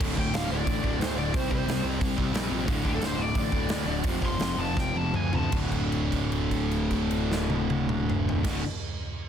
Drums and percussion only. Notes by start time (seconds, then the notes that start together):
0.01 kick, crash
0.17 kick
0.34 snare, open hi-hat
0.67 kick, open hi-hat
0.84 kick
1.01 snare, open hi-hat
1.34 kick, open hi-hat
1.51 kick
1.69 snare, open hi-hat
2.01 kick, open hi-hat
2.18 kick
2.34 snare, open hi-hat
2.68 kick, open hi-hat
2.85 kick
3.02 snare, open hi-hat
3.35 kick, open hi-hat
3.52 kick
3.69 snare, open hi-hat
4.04 kick, open hi-hat
4.22 kick
4.40 snare, open hi-hat
4.77 kick, snare
4.96 high tom
5.14 mid tom
5.33 floor tom
5.52 kick, crash
5.72 kick, crash
5.92 crash
6.12 kick, crash
6.32 crash
6.51 kick, crash
6.71 crash
6.91 kick, crash
7.11 crash
7.32 snare
7.50 high tom
7.70 high tom
7.89 mid tom
8.10 mid tom
8.29 floor tom
8.44 kick, snare, crash